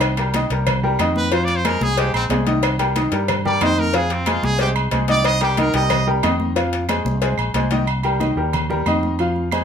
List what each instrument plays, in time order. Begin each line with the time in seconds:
Already playing: fretless electric bass C2, grand piano D#3 D#4 D#5
0.01 cowbell, low agogo, claves
0.17 grand piano G3 G4 A#4, cowbell, high conga, low agogo
0.34 grand piano D#3 D#4 D#5, cowbell, high conga, low agogo
0.50 fretless electric bass C2, grand piano G3 G4 A#4, cowbell, high conga
0.67 cowbell, high conga, low conga, low agogo, claves
0.83 grand piano G3 G4 A#4, high conga
0.99 fretless electric bass F2, grand piano D#3 D#4 D#5, cowbell, high conga, low agogo, claves
1.16 trumpet B4, high conga
1.32 grand piano F3 F4 F5, trumpet C5, cowbell, high conga, low agogo
1.45 trumpet D5, cowbell, high conga
1.56 trumpet C5
1.65 grand piano G#3 G#4 C5, trumpet A#4, cowbell, high conga, low agogo, claves
1.81 fretless electric bass C2, trumpet G#4, high conga
1.97 grand piano G#3 G#4 C5, trumpet G4, cowbell, high conga, low agogo
2.14 fretless electric bass A#1, trumpet C4, high conga, low agogo, claves
2.29 fretless electric bass C2, grand piano G#3 G#4 C5, cowbell, high conga, low timbale, low agogo
2.47 grand piano D#3 D#4 D#5, cowbell, high conga
2.63 cowbell, low agogo, claves
2.79 grand piano G3 G4 A#4, cowbell, high conga, low agogo
2.96 grand piano D#3 D#4 D#5, cowbell, high conga, low agogo
3.12 fretless electric bass G2, grand piano G3 G4 A#4, cowbell, high conga
3.28 cowbell, high conga, low conga, low agogo, claves
3.45 grand piano G3 G4 A#4, trumpet D5, high conga, low conga
3.61 fretless electric bass F2, grand piano D#3 D#4 D#5, trumpet C5, cowbell, high conga, low timbale, low agogo, claves
3.78 trumpet A#4, high conga
3.94 grand piano F3 F4 F5, trumpet G#4, cowbell, high conga, low agogo
4.10 trumpet C4, cowbell, high conga
4.26 grand piano G#3 G#4 C5, trumpet F4, cowbell, high conga, low agogo, claves
4.43 fretless electric bass C2, trumpet G#4, high conga
4.59 grand piano G#3 G#4 C5, trumpet G4, cowbell, low agogo
4.76 high conga, low agogo, claves
4.91 fretless electric bass C2, grand piano G#3 G#4 C5, cowbell, high conga, low agogo
5.08 grand piano D#3 D#4 D#5, trumpet D5, cowbell, high conga
5.24 trumpet D#5, cowbell, high conga, low agogo, claves
5.41 grand piano G3 G4 A#4, trumpet G4, cowbell, high conga, low agogo
5.57 grand piano D#3 D#4 D#5, trumpet A#4, cowbell, high conga, low agogo
5.74 fretless electric bass C2, grand piano G3 G4 A#4, trumpet D#5, cowbell
5.90 cowbell, high conga, low conga, low agogo, claves
6.07 grand piano G3 G4 A#4, high conga
6.23 fretless electric bass F2, grand piano D#3 D#4 D#5, cowbell, high conga, low timbale, low agogo, claves
6.40 high conga
6.56 grand piano F3 F4 F5, cowbell, high conga, low agogo
6.73 cowbell
6.89 grand piano G#3 G#4 C5, cowbell, high conga, low agogo, claves
7.05 fretless electric bass C2, high conga
7.22 grand piano G#3 G#4 C5, cowbell, high conga, low agogo
7.38 fretless electric bass A#1, high conga, low agogo, claves
7.54 fretless electric bass C2, grand piano G#3 G#4 C5, cowbell, high conga, low agogo
7.71 grand piano D#3 D#4 D#5, cowbell, high conga
7.87 high conga, low agogo, claves
8.03 grand piano G3 G4 A#4, high conga, low agogo
8.20 grand piano D#3 D#4 D#5, high conga, low agogo
8.36 fretless electric bass D#2, grand piano G3 G4 A#4, high conga
8.53 high conga, low conga, low agogo, claves
8.69 grand piano G3 G4 A#4, high conga, low conga
8.86 fretless electric bass F2, grand piano D#3 D#4 D#5, high conga, low agogo, claves
9.03 high conga
9.19 grand piano F3 F4 F5, high conga, low agogo
9.36 high conga
9.52 grand piano G#3 G#4 C5, high conga, low agogo, claves